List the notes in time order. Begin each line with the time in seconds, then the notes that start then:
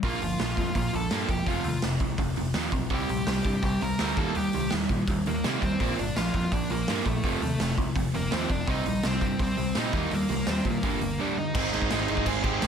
0.03 A#1 A#2 F3 A#3 F4 F5, kick, open hi-hat
0.21 G1 A#2 F3, open hi-hat
0.39 A#1 A#2 F3, snare, open hi-hat
0.57 F2 A#2 F3, kick, open hi-hat
0.75 A#1 A#2 F3 F4 F5, kick, open hi-hat
0.93 A#1 A#2 F3 A4 A5, open hi-hat
1.11 G2 A#2 F3 A#3, snare, open hi-hat
1.28 E1 A#2 F3 G4 G5, kick, open hi-hat
1.46 F1 F2 C3 F3 F4 F5, kick, open hi-hat
1.64 D#2 F2 C3, open hi-hat
1.82 F1 F2 C3, snare, open hi-hat
2.00 C2 F2 C3, kick, open hi-hat
2.18 F1 F2 C3, kick, open hi-hat
2.36 F1 F2 C3, open hi-hat
2.54 D#2 F2 C3 F3, snare, open hi-hat
2.72 B1 F2 C3, kick, open hi-hat
2.90 C2 C3 G3 C4 G4, kick, open hi-hat
2.94 G5
3.09 A#1 C3 G3, open hi-hat
3.27 C2 C3 G3, snare, open hi-hat
3.45 G2 C3 G3, kick, open hi-hat
3.62 C2 C3 G3 G4 G5, kick, open hi-hat
3.81 C2 C3 G3 A#4 A#5, open hi-hat
3.99 D2 C3 G3 C4, snare, open hi-hat
4.17 D#2 D#3 G3 A#3 A4 A5, kick, open hi-hat
4.35 D#2 D#3 G3 G4 G5, open hi-hat
4.53 C2 D#3 G3, open hi-hat
4.70 D#2 D#3 G3, snare, open hi-hat
4.89 A#2 D#3 G3, kick, open hi-hat
5.08 D#2 D#3 G3, kick, open hi-hat
5.26 D#2 D#3 G3 A#3 A#4, open hi-hat
5.44 C3 D#3 G3 A#3, snare, open hi-hat
5.62 D#2 D#3 G3 C4 C5, kick, open hi-hat
5.80 A#1 A#2 F3 A#3, kick, open hi-hat
5.99 G1 A#2 F3 D4 D5, open hi-hat
6.16 A#1 A#2 F3 F4 F5, snare, open hi-hat
6.34 F2 A#2 F3, kick, open hi-hat
6.52 A#1 A#2 F3 D4 D5, kick, open hi-hat
6.70 A#1 A#2 F3 A#3 A#4, open hi-hat
6.88 G2 A#2 F3 A#3, snare, open hi-hat
7.06 A#1 A#2 F3 A3 A4, kick, open hi-hat
7.23 F1 F2 C3 F3, kick, open hi-hat
7.42 D#2 F2 C3, open hi-hat
7.59 F1 F2 C3, snare, open hi-hat
7.78 C2 F2 C3, kick, open hi-hat
7.96 F1 F2 C3, kick, open hi-hat
8.14 F1 F2 C3 A#3 A#4, open hi-hat
8.31 D#2 F2 C3 F3 C4 C5, snare, open hi-hat
8.50 F1 F2 C3 D4 D5, kick, open hi-hat
8.67 C2 C3 G3 C4 D#4 D#5, kick, open hi-hat
8.85 A#1 C3 G3, open hi-hat
9.03 C2 C3 G3 C4 C5, snare, open hi-hat
9.21 G2 C3 G3, kick, open hi-hat
9.39 C2 C3 G3 C4 C5, kick, open hi-hat
9.57 C2 C3 G3, open hi-hat
9.75 A#2 C3 G3 C4 D#4, snare, open hi-hat
9.80 D#5
9.93 D#2 D#3 G3 A#3, kick, open hi-hat
10.11 D#2 D#3 G3 A#3 A#4, open hi-hat
10.29 C2 D#3 G3, open hi-hat
10.47 D#2 D#3 G3 C4 C5, snare, open hi-hat
10.65 A#2 D#3 G3, kick, open hi-hat
10.70 A#3 A#4
10.83 G1 G2 D3 G3, kick, open hi-hat
11.01 G1 G2 D3, open hi-hat
11.20 G2 D3 G3 D4 D5
11.38 G2 D3 D#4 D#5
11.55 G#1 G#3 C4 D#4 G#4 C5, kick, crash
11.73 G#1 G#3 C4 D#4 G#4 C5, crash
11.82 kick
11.90 G#1 G#3 C4 D#4 G#4 C5 D#5, snare, crash
12.08 G#1 G#3 C4 D#4 G#4 C5, crash
12.17 kick
12.25 G#1 G#3 C4 D#4 G#4 C5 G#5, kick, crash
12.43 G#3 C4 D#4 G4 G#4 C5 G5, kick, crash
12.62 G#1 G#3 C4 D#4 G#4 C5, snare, crash